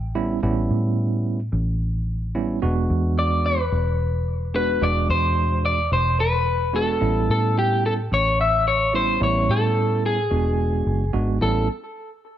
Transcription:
Already playing: A1
0.15 G3 B3 C#4 E4
0.43 A1 G3 B3 C#4 E4
0.70 A2
1.52 A1
2.35 G3 B3 C#4 E4
2.62 E1 G#3 B3 D4 F#4
2.90 E2
3.19 D5
3.46 B4
3.72 E1
4.54 G#3 B3 D4 F#4 B4
4.81 E1 B2 G#3 D4 F#4 D5
5.09 E2 C5
5.65 D5
5.91 E1 C5
6.20 B4
6.73 G#3 B3 D4 F#4 A4
7.01 A1 G3 B3 C#4 E4
7.29 A2 A4
7.59 G4
7.86 A4
8.11 A1 C#5
8.41 E5
8.68 C#5
8.93 G3 B3 C#4 E4 C5
9.20 A1 G3 B3 C#4 E4 C#5
9.49 A2 A4
10.06 G#4
10.31 E1 G#3 B3 D4 F#4
10.86 F#1
11.13 G#1 G#3 B3 D4 F#4
11.41 A1 G3 B3 C#4 E4 A4

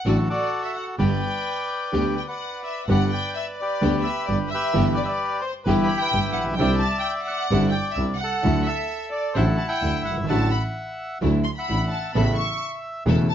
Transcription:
0.05 A1 A2 D3 F#3 A3 D4 F#4 A4 D5
0.30 F#4 A4 D5
0.63 E5
0.74 F#5
0.98 G1 G2 D3 G3 B3 D4 G4 B4 D5 G5
1.92 D2 D3 G3 B3 D4 G4
2.16 G5
2.28 B4 D5 F#5
2.64 E5
2.88 G1 G2 D3 G3 B3 D4 G4 D5 F#5
2.92 B4
3.12 G5
3.34 E5
3.56 D5
3.62 G4 B4
3.81 D2 D3 G3 B3 D4 G4
4.02 E5
4.25 G1 G2 B3 D5
4.30 D4 G4
4.48 E5
4.54 G4 B4
4.73 G1 G2 E3 G3 B3 E4 G4
4.95 D5
5.04 E5
5.08 D5
5.41 C5
5.64 G1 G2 E3 G3 B3 E4 G4 B4
5.68 B3 E4 G4
5.84 B5
5.97 G5
6.02 B4 E5
6.13 G1 G2 B3 E4 G4
6.33 A#1 F#5
6.43 A1
6.48 A#1
6.53 B1 G5
6.58 C2 C3 D3 G3 C4 D4 E4 D5 E5
6.78 A5
6.99 G5
7.04 G5
7.22 F#5
7.27 D5 F#5
7.51 G1 G2 D3 G3 C4 D4 E4
7.70 G5
7.91 E5
7.95 C2 C3 C4 D4 E4 E5
8.15 F#5
8.21 A4 F#5
8.43 D2 D3 F#3 A3 D4 E4
8.62 E5
8.68 A4
9.12 D5
9.34 A1 A2 D3 F#3 A3 D4 E4 C5 F#5
9.57 A5
9.69 E5 G5
9.82 D2 D3 F#3 D4 E4
10.04 G1 F#5
10.11 F#1
10.17 G1
10.24 G#1 A5
10.28 A1 A2 D3 F#3 A3 D4 E4 E5 F#5 A5
10.51 B5
11.21 D2 D3 F#3 A3 D4 E4
11.44 C6
11.56 E5 F#5 B5
11.69 A1 A2 F#3 D4 E4
11.90 A5
11.95 A5
12.15 A1 A2 C#3 A3 B3 C#4 E4 A4 E5 B5
12.36 C#6
13.05 E1 E2 C#3 A3 B3 C#4 E4 A4
13.29 A5

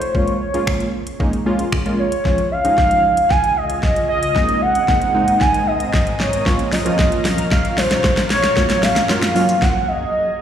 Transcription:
Already playing: C5
0.02 closed hi-hat
0.14 G#3 A#3 C#4 F4 C#5, kick
0.28 closed hi-hat
0.41 C#5
0.54 G#3 A#3 C#4 F4, closed hi-hat
0.67 finger snap, kick
0.80 closed hi-hat
1.07 closed hi-hat
1.20 G#3 A#3 C#4 D#4, kick
1.33 closed hi-hat
1.46 G#3 A#3 C#4 F4
1.59 closed hi-hat
1.72 finger snap, kick
1.85 G#3 A#3 C#4 F4, closed hi-hat
1.99 C#5
2.12 closed hi-hat
2.25 C#2 C#3 F3 G#3 C#4 F4 G#4, kick, snare
2.38 closed hi-hat
2.51 C#4 F4 F5
2.64 F3 G#3 C#4 D#4, closed hi-hat
2.78 kick, snare
2.91 closed hi-hat
3.17 closed hi-hat
3.30 G#5, kick, snare
3.44 closed hi-hat
3.57 D#5
3.70 closed hi-hat
3.83 kick, snare
3.96 closed hi-hat
4.09 D#5
4.23 closed hi-hat
4.36 G#2 G#3 A#3 C4 D#4 A#4 D#5, kick, snare
4.49 closed hi-hat
4.62 F#5
4.75 closed hi-hat
4.88 G#3 A#3 C4 D#4, kick, snare
5.02 closed hi-hat
5.14 G#3 A#3 C4 D#4
5.28 closed hi-hat
5.41 G#5, kick, snare
5.54 closed hi-hat
5.67 D#5
5.80 closed hi-hat
5.94 kick, snare
6.07 closed hi-hat
6.19 C#5, snare
6.33 closed hi-hat
6.46 A#2 F3 A#3 C#4 F4 F5, kick, snare
6.59 closed hi-hat
6.72 C#4 F4 D#5, snare, open hi-hat
6.85 F3 A#3 C#4 F4, closed hi-hat
6.99 kick, snare
7.12 closed hi-hat
7.25 snare, open hi-hat
7.38 closed hi-hat
7.51 F5, kick, snare
7.65 closed hi-hat
7.77 C5, snare, open hi-hat
7.91 snare, closed hi-hat
8.04 kick, snare
8.17 snare, closed hi-hat
8.30 C#5, snare, open hi-hat
8.44 snare, closed hi-hat
8.56 F#2 F#3 A#3 C#4 F4 G#4, kick, snare, shaker
8.70 snare, closed hi-hat, shaker
8.83 F5, snare, open hi-hat, shaker
8.96 snare, closed hi-hat, shaker
9.09 F#3 A#3 C#4 F4, snare, shaker
9.23 snare, closed hi-hat, shaker
9.35 F#3 A#3 C#4 F4, open hi-hat, shaker
9.49 closed hi-hat, shaker
9.62 F#5, kick, snare
9.88 D#5

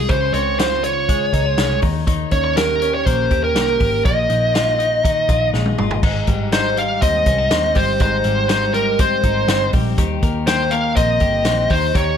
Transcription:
Already playing: G#3 C4 F4 G#4
0.09 C#2 C#3 C5, kick, closed hi-hat
0.33 C#2 C4 C#5, closed hi-hat
0.59 F4 C5, snare, closed hi-hat
0.84 C#5, closed hi-hat
1.09 G#3, kick, closed hi-hat
1.33 C#2 D#4, kick, closed hi-hat
1.46 F4
1.57 C2 G#3, snare, closed hi-hat
1.82 D#2 D#3, kick, open hi-hat
2.07 D#3, kick, closed hi-hat
2.31 D#2 C#4 C#5, kick, closed hi-hat
2.44 C#5
2.57 G4 A#4, snare, closed hi-hat
2.82 C#4, closed hi-hat
2.94 C#5
3.05 A#1 A#3 C5, kick, closed hi-hat
3.31 D#2 G4, kick, closed hi-hat
3.44 A#4
3.55 C2 A#3, snare, closed hi-hat
3.80 G#1 G4, kick, open hi-hat
4.05 A#1 A#2 D#5, kick, closed hi-hat
4.30 A#1 D#4, closed hi-hat
4.54 F4, snare, closed hi-hat
4.79 D#4, closed hi-hat
5.04 D#3, kick, closed hi-hat
5.29 A#1 F4, kick, closed hi-hat
5.54 A#1 G#3, snare
5.66 high tom
5.78 G#1 F4, mid tom
5.91 floor tom
6.03 G#1 G#2 D#4, kick, crash
6.27 G#1 G3, kick, closed hi-hat
6.52 D#4 C5, snare, closed hi-hat
6.77 G3 F5, closed hi-hat
7.02 D#2 C4 D#5, kick, closed hi-hat
7.26 C2 C#4, kick, closed hi-hat
7.38 D#4
7.51 D#2 C4, snare, closed hi-hat
7.75 G1 G3 C5, kick, open hi-hat
8.00 G#1 G#2 D#4 C5, kick, closed hi-hat
8.24 G#1 G3, closed hi-hat
8.49 D#4 C5, snare, closed hi-hat
8.74 G3 A#4, closed hi-hat
8.99 C4 C5, kick, closed hi-hat
9.23 G#1 D#4, kick, closed hi-hat
9.48 G1 C4, snare, closed hi-hat
9.73 A#1 G3, kick, open hi-hat
9.98 D#2 D#3 G4, kick, closed hi-hat
10.22 D#2 A#3, kick, closed hi-hat
10.47 G4 C5, snare, closed hi-hat
10.71 A#3 F5, closed hi-hat
10.96 A#1 C4 D#5, kick, closed hi-hat
11.20 G1 G4, kick, closed hi-hat
11.45 A#1 C4, snare, closed hi-hat
11.70 D#2 D#3 C5, kick, open hi-hat
11.94 D#2 D#3 G4 C#5, kick, closed hi-hat

